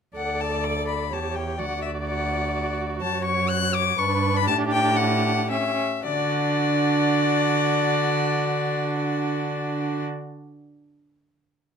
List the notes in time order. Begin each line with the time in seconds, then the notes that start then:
0.16 D2 A4 D5 F#5
0.41 A5
0.64 D6
0.88 B5
1.12 E2 G4 C#5 A5
1.35 G5
1.59 D2 F#4 D5 F#5
1.82 E5
2.07 F#5
3.01 F#2 C#5 A5
3.25 C#6
3.49 F#6
3.74 D6
3.98 G2 D4 B4 C#6
4.37 B5
4.47 A2 G4 A5
4.72 G5
4.97 F#5
5.51 C#4 E5
6.05 D3 D4 F#4 D5